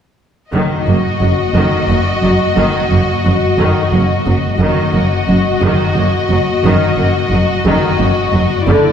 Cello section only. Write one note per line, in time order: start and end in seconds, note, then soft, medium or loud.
0.53 0.61 F#2 soft
0.88 0.96 F#2 soft
1.21 1.29 F#2 soft
1.55 1.63 F#2 soft
1.89 1.97 F#2 soft
2.22 2.30 F#2 soft
2.56 2.64 F#2 soft
2.90 2.98 F#2 soft
3.24 3.32 F#2 soft
3.59 3.67 F#2 soft
3.92 4.00 F#2 soft
4.26 4.34 F#2 soft
4.60 4.68 F#2 soft
4.94 5.02 F#2 soft
5.27 5.35 F#2 soft
5.61 5.69 F#2 soft
5.95 6.03 F#2 soft
6.30 6.38 F#2 soft
6.64 6.72 F#2 soft
6.97 7.05 F#2 soft
7.32 7.40 F#2 soft
7.65 7.73 F#2 soft
7.99 8.07 F#2 soft
8.33 8.41 F#2 soft
8.67 8.75 F#2 soft